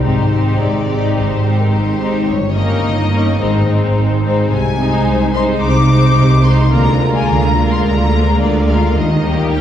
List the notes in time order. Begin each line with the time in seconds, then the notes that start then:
Already playing: G3 C4 D#4 G4
0.04 G#1 G#2 G#3 C4 D#4 G4 C5
0.32 G#3 C4 D#4 G4
0.61 G#1 G#2 G4 D5
0.88 G#3 C4 D#4 G4
1.17 G#1 G#2 D#3 C5
1.44 G#3 C4 D#4 G4
1.59 A#4
1.72 G#1 G#2 G4 C5
2.00 G#3 C4 D#4 G4
2.27 G1 G2 C#5
2.55 A#3 C#4 D#4 A#4 D#5
2.83 G1 G2 A#4
3.11 A#3 C#4 D#4 A#4
3.39 G#1 G#2 G#3 C4 D#4 C5
3.66 G#3 C4 D#4 C5
3.94 G#1 G#2 G#4
4.23 G#3 C4 D#4 C5
4.50 C2 C3 G#5
4.79 G#3 C4 D#4 C5
5.07 C2 C3 G#4
5.33 G#3 D#4 C5 C6
5.62 C2 C3 D6
5.88 G#3 C4 D#4 C5
6.17 C2 C3 G#4
6.44 G#3 D#4 C5 C6
6.72 D2 D3 G#3 A#3 F4 A#4 A#5
7.00 G#3 A#3 F4 A#4
7.15 G#5
7.28 D2 D3 A#5
7.57 G#3 A#3 F4 A#4
7.71 C6
7.84 D2 D3 A#5
8.12 G#3 A#3 F4 A#4
8.40 D2 D3 G#4 D5
8.66 G#3 A#3 F4 A#4 F5
8.95 D#2 D#3 D#5
9.22 G3 A#3 D#4 G4 A#4
9.51 D#2 D#3 A#4 G5